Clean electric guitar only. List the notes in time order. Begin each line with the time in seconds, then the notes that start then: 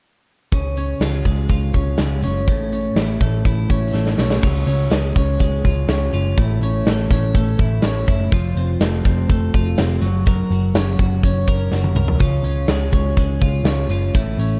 0.53 C#3
0.78 C#4
1.02 F4
1.25 G#3
1.50 F4
1.74 C#4
1.99 G#3
2.24 C#4
2.49 A2
2.73 C#4
2.97 E4
3.22 A3
3.45 E4
3.70 C#4
3.93 A3
4.18 C#4
4.42 C#3 F4
4.67 C#4
4.91 G#3
5.17 C#4
5.40 G#3
5.65 F4
5.89 C#4
6.14 F4
6.38 A2 E4
6.63 C#4
6.87 A3
7.11 C#4
7.35 A3
7.61 E4
7.85 C#4
8.08 E4
8.33 F3 F4
8.57 C4
8.82 A3
9.06 C4
9.31 A3
9.55 F4
9.78 C4
10.02 F#3
10.27 F#3 A#4
10.52 F#4
10.75 C#4
11.00 F#4
11.24 C#4
11.49 A#4
11.72 F#4
11.96 A#4
12.20 C#3 F4
12.44 C#4
12.69 G#3
12.93 C#4
13.18 G#3
13.42 F4
13.66 C#4
13.91 F4
14.15 A2 E4
14.39 C#4